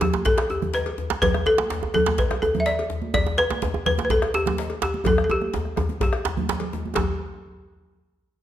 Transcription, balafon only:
0.02 0.26 G4 medium
0.25 0.50 A4 medium
0.50 0.75 G4 medium
0.74 1.08 B4 medium
1.22 1.44 B4 loud
1.47 1.93 A4 loud
1.94 2.05 A4 loud
2.19 2.43 B4 medium
2.42 2.50 A4 medium
2.60 2.66 E5 medium
2.66 3.00 D5 loud
3.14 3.25 D5 loud
3.38 3.85 B4 loud
3.86 4.04 B4 loud
4.05 4.10 B4 medium
4.11 4.33 A4 medium
4.35 4.79 G4 loud
4.83 5.07 G4 medium
5.07 5.23 A4 medium
5.24 5.30 A4 medium
5.31 6.02 G4 medium
6.03 6.46 G4 medium
6.96 7.18 G4 medium

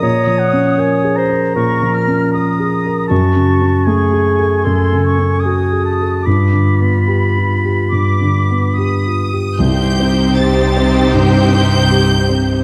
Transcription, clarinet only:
0.03 1.15 C#5 medium
1.18 1.55 C5 medium
1.56 2.70 A#4 medium
3.10 3.90 F#4 medium
3.88 4.65 G#4 medium
4.65 5.48 A4 medium
5.46 6.27 F#4 medium
6.26 9.18 F4 medium

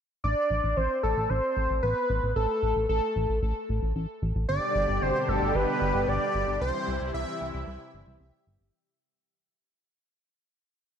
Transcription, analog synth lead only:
0.24 0.78 D5 loud
0.77 1.03 C5 loud
1.03 1.31 A4 medium
1.30 1.82 C5 loud
1.83 2.32 B4 medium
2.36 2.86 A4 medium
2.89 3.39 A4 medium
4.49 5.04 D5 loud
5.02 5.30 C5 loud
5.29 5.57 A4 medium
5.55 6.10 B4 loud
6.08 6.61 D5 loud
6.61 7.11 C5 loud
7.14 7.64 E5 loud

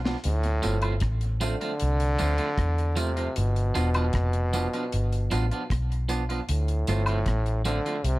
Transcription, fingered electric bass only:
0.00 0.14 B1 medium
0.25 0.59 D2 loud
0.65 0.98 G1 medium
1.02 1.53 A1 loud
1.82 2.15 C2 loud
2.21 2.38 D2 loud
2.58 3.26 E2 loud
3.37 3.71 G1 loud
3.76 4.10 E1 loud
4.14 4.66 F1 medium
4.93 5.27 G1 loud
5.32 5.49 A1 loud
5.71 6.39 B1 medium
6.49 6.83 D2 loud
6.88 7.22 G1 loud
7.27 7.78 A1 medium
8.04 8.19 C2 loud

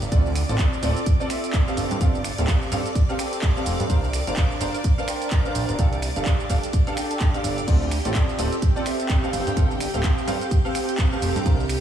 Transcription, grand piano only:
0.12 0.27 C4 medium
0.12 0.27 F4 medium
0.12 0.27 A4 medium
0.12 0.27 D5 loud
0.49 0.80 C4 medium
0.49 0.80 F4 medium
0.49 0.80 A4 medium
0.49 0.80 D5 medium
0.83 0.98 C4 loud
0.83 0.98 F4 medium
0.83 0.98 A4 medium
0.83 0.98 D5 loud
1.20 1.28 C4 loud
1.20 1.28 F4 medium
1.20 1.28 A4 loud
1.20 1.28 D5 loud
1.30 1.64 C4 medium
1.30 1.64 F4 medium
1.30 1.64 A4 medium
1.30 1.64 E5 medium
1.67 1.98 C4 medium
1.67 1.98 G4 medium
1.67 1.99 A4 medium
1.67 1.98 F5 loud
2.01 2.16 C4 medium
2.01 2.16 G4 medium
2.01 2.16 A4 medium
2.01 2.16 F5 loud
2.38 2.69 C4 medium
2.38 2.69 G4 medium
2.38 2.69 A4 medium
2.38 2.69 F5 medium
2.72 2.87 C4 loud
2.72 2.87 G4 medium
2.72 2.87 A4 medium
2.72 2.87 F5 loud
3.09 3.17 C4 loud
3.09 3.17 G4 medium
3.09 3.17 A4 medium
3.09 3.17 F5 loud
3.19 3.53 C4 medium
3.19 3.53 G4 medium
3.19 3.53 A4 medium
3.19 3.53 G5 medium
3.56 3.87 C4 medium
3.56 3.87 G4 medium
3.56 3.87 A4 medium
3.56 3.87 F5 loud
3.90 4.05 D4 medium
3.90 4.05 A#4 medium
3.90 4.05 C5 medium
3.90 4.05 F5 loud
4.27 4.58 D4 medium
4.27 4.58 A#4 medium
4.27 4.58 C5 medium
4.27 4.58 F5 medium
4.61 4.76 D4 loud
4.61 4.76 A#4 medium
4.61 4.76 C5 medium
4.61 4.76 F5 loud
4.98 5.06 D4 loud
4.98 5.06 A#4 medium
4.98 5.06 C5 medium
4.98 5.06 F5 loud
5.08 5.42 D4 medium
5.08 5.42 A#4 medium
5.08 5.42 C5 medium
5.08 5.42 G5 medium
5.45 5.76 D4 medium
5.45 5.76 A#4 medium
5.45 5.76 C5 medium
5.45 5.76 F5 loud
5.79 5.94 D4 medium
5.79 5.94 G4 medium
5.79 5.94 A4 medium
5.79 5.94 F5 loud
6.16 6.47 D4 medium
6.16 6.47 G4 medium
6.16 6.47 A4 medium
6.16 6.47 F5 medium
6.50 6.65 D4 loud
6.50 6.65 G4 medium
6.50 6.65 A4 medium
6.50 6.65 F5 loud
6.87 6.95 D4 loud
6.87 6.95 G4 medium
6.87 6.95 A4 loud
6.87 6.95 F5 loud
6.97 7.31 D4 medium
6.97 7.31 G4 medium
6.97 7.31 A4 medium
6.97 7.31 G5 medium
7.34 7.65 D4 medium
7.34 7.65 G4 medium
7.34 7.65 A4 medium
7.34 7.65 F5 loud
7.68 7.83 C4 medium
7.68 7.83 F4 medium
7.68 7.83 A4 medium
7.68 7.83 D5 loud
8.05 8.36 C4 medium
8.05 8.36 F4 medium
8.05 8.36 A4 medium
8.05 8.36 D5 loud
8.39 8.54 C4 loud
8.39 8.54 F4 medium
8.39 8.54 A4 medium
8.39 8.54 D5 loud
8.76 8.84 C4 loud
8.76 8.84 F4 loud
8.76 8.84 A4 medium
8.76 8.84 D5 loud
8.86 9.20 C4 medium
8.86 9.20 F4 medium
8.86 9.20 A4 medium
8.86 9.20 E5 medium
9.23 9.54 C4 medium
9.23 9.54 G4 medium
9.23 9.54 A4 medium
9.23 9.54 F5 loud
9.57 9.72 C4 medium
9.57 9.72 G4 medium
9.57 9.72 A4 medium
9.57 9.72 F5 loud
9.94 10.25 C4 medium
9.94 10.25 G4 medium
9.94 10.25 A4 medium
9.94 10.25 F5 medium
10.27 10.43 C4 loud
10.27 10.43 G4 loud
10.27 10.43 A4 medium
10.27 10.43 F5 loud
10.65 10.73 C4 loud
10.65 10.73 G4 loud
10.65 10.73 A4 loud
10.65 10.73 F5 loud
10.75 11.09 C4 medium
10.75 11.09 G4 medium
10.75 11.09 A4 medium
10.75 11.09 G5 medium
11.12 11.43 C4 medium
11.12 11.43 G4 medium
11.12 11.43 A4 medium
11.12 11.43 F5 loud
11.46 11.61 D4 medium
11.46 11.61 A#4 medium
11.46 11.61 C5 medium
11.46 11.61 F5 loud

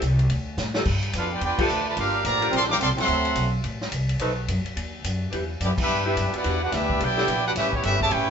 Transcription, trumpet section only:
1.18 1.32 D4 medium
1.18 1.31 A4 medium
1.18 1.31 B4 medium
1.18 1.32 F5 medium
1.34 1.42 F4 medium
1.34 1.42 B4 medium
1.34 1.42 D5 medium
1.34 1.42 G5 medium
1.44 1.59 F4 medium
1.44 1.59 B4 medium
1.44 1.59 D5 medium
1.44 1.59 G5 medium
1.60 1.87 F4 medium
1.60 1.87 B4 medium
1.60 1.87 D5 medium
1.60 1.87 A5 medium
1.88 1.97 F4 medium
1.88 1.97 B4 medium
1.88 1.97 D5 medium
1.88 1.97 A5 medium
1.99 2.24 D4 medium
1.99 2.24 G4 medium
1.99 2.24 A#4 medium
1.99 2.24 F5 loud
2.26 2.52 G4 medium
2.26 2.51 D5 medium
2.26 2.52 F5 medium
2.26 2.52 A#5 loud
2.56 2.63 A4 medium
2.56 2.63 D5 medium
2.56 2.63 F5 medium
2.56 2.63 C6 loud
2.71 2.77 A#4 medium
2.71 2.76 F5 medium
2.71 2.76 G5 medium
2.71 2.76 D6 medium
2.81 2.89 A4 medium
2.81 2.89 D5 medium
2.81 2.89 F5 medium
2.81 2.89 C6 loud
3.00 3.51 A4 medium
3.00 3.51 E5 medium
3.00 3.51 F#5 medium
3.00 3.52 C6 medium
5.64 5.71 B3 medium
5.64 5.71 E4 medium
5.64 5.70 G4 medium
5.64 5.71 D5 medium
5.82 6.06 D4 medium
5.82 6.06 G4 medium
5.82 6.06 B4 medium
5.82 6.06 E5 loud
6.08 6.33 D4 medium
6.08 6.33 G4 medium
6.08 6.33 B4 medium
6.08 6.33 E5 medium
6.36 6.62 E4 medium
6.36 6.62 B4 medium
6.36 6.63 D5 medium
6.36 6.62 F#5 medium
6.63 6.73 D4 medium
6.63 6.72 G4 medium
6.63 6.72 B4 medium
6.63 6.72 F#5 medium
6.73 7.00 D4 medium
6.73 7.01 G4 medium
6.73 7.00 B4 medium
6.73 7.00 E5 loud
7.03 7.46 E4 medium
7.03 7.46 B4 medium
7.03 7.46 D5 medium
7.03 7.46 G5 loud
7.47 7.51 D4 medium
7.47 7.51 G4 medium
7.47 7.51 B4 medium
7.47 7.51 F#5 medium
7.57 7.72 C#4 medium
7.57 7.72 G4 medium
7.57 7.72 B4 medium
7.57 7.72 E5 loud
7.75 7.84 B3 medium
7.75 7.84 E4 medium
7.75 7.83 G4 medium
7.75 7.84 C#5 medium
7.85 8.00 C#4 medium
7.85 8.00 G4 medium
7.85 8.00 B4 medium
7.85 8.00 E5 loud
8.02 8.11 G4 medium
8.02 8.10 C#5 loud
8.02 8.11 E5 medium
8.02 8.11 A5 loud
8.11 8.30 E4 loud
8.11 8.30 B4 loud
8.11 8.30 C#5 medium
8.11 8.30 G5 loud

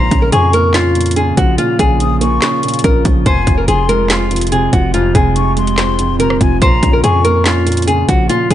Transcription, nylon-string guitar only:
0.00 0.20 C5 loud
0.22 0.31 A#4 medium
0.33 0.51 G#4 medium
0.54 0.72 A#4 medium
0.74 1.14 F4 medium
1.16 1.35 G#4 medium
1.37 1.56 F#4 medium
1.58 1.77 F4 loud
1.79 2.80 G#4 medium
2.84 3.03 A#4 medium
3.26 3.56 C5 loud
3.58 3.67 A#4 medium
3.68 3.86 G#4 medium
3.89 4.07 A#4 medium
4.10 4.50 F4 medium
4.52 4.70 G#4 medium
4.73 4.91 F#4 medium
4.94 5.12 F4 loud
5.15 6.16 G#4 medium
6.20 6.38 A#4 medium
6.62 6.91 C5 loud
6.93 7.02 A#4 medium
7.04 7.22 G#4 medium
7.25 7.43 A#4 medium
7.46 7.85 F4 medium
7.87 8.06 G#4 medium
8.09 8.27 F#4 medium
8.29 8.48 F4 loud
8.51 8.54 G#4 medium

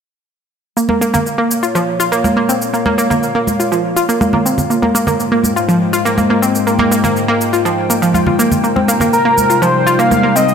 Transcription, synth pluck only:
0.77 0.82 A#3 medium
0.89 0.94 A#3 loud
1.01 1.06 A#3 loud
1.14 1.19 A#3 loud
1.38 1.43 A#3 loud
1.63 1.68 F4 medium
1.75 1.80 F3 loud
2.00 2.05 F4 loud
2.12 2.17 A#3 loud
2.24 2.35 A#3 medium
2.37 2.42 A#3 medium
2.49 2.57 C4 medium
2.73 2.78 A#3 medium
2.86 2.91 A#3 loud
2.98 3.03 A#3 loud
3.10 3.15 A#3 medium
3.35 3.40 A#3 loud
3.60 3.65 F4 medium
3.72 3.77 F3 loud
3.96 4.01 F4 loud
4.09 4.14 A#3 loud
4.21 4.32 A#3 medium
4.33 4.38 A#3 medium
4.46 4.54 C4 medium
4.70 4.75 A#3 medium
4.82 4.87 A#3 loud
4.95 5.00 A#3 loud
5.07 5.12 A#3 loud
5.32 5.37 A#3 medium
5.56 5.61 F4 medium
5.69 5.74 F3 loud
5.93 5.98 F4 loud
6.05 6.10 A#3 loud
6.18 6.29 A#3 medium
6.30 6.35 A#3 medium
6.42 6.51 C4 medium
6.67 6.72 A#3 medium
6.79 6.84 A#3 loud
6.92 6.97 A#3 medium
7.04 7.09 A#3 loud
7.28 7.33 A#3 loud
7.53 7.58 F4 medium
7.65 7.70 F3 loud
7.90 7.98 A#3 medium
8.02 8.10 F3 loud
8.14 8.19 F4 medium
8.27 8.32 F4 medium
8.39 8.47 A#3 loud
8.64 8.69 A#3 medium
8.76 8.84 C4 medium
8.88 8.93 A#3 loud
9.01 9.06 A#3 loud
9.25 9.30 A#3 loud
9.50 9.55 F4 medium
9.62 9.67 F3 loud
9.87 9.92 F4 loud
9.99 10.04 A#3 loud
10.11 10.22 A#3 medium
10.23 10.28 A#3 medium
10.36 10.44 C4 medium

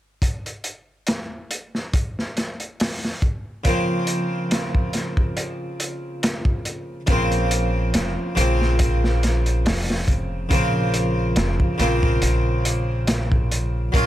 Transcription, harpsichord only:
3.64 6.99 C#3 medium
3.64 7.00 F3 medium
3.64 7.01 A#3 medium
3.68 7.02 C4 medium
7.07 8.31 C#3 medium
7.07 8.32 F3 medium
7.07 8.33 A#3 medium
7.12 8.34 C4 medium
8.35 10.46 C#3 medium
8.35 10.46 F3 medium
8.35 10.47 A#3 medium
8.40 10.48 C4 medium
10.49 11.74 C#3 medium
10.49 11.75 F3 medium
10.49 11.75 A#3 medium
10.53 11.76 C4 medium
11.78 13.88 C#3 medium
11.78 13.89 F3 medium
11.78 13.90 A#3 medium
11.82 13.91 C4 loud
13.92 14.06 F#3 medium
13.92 14.06 A#3 medium
13.92 14.06 C#4 medium
13.97 14.06 F4 medium

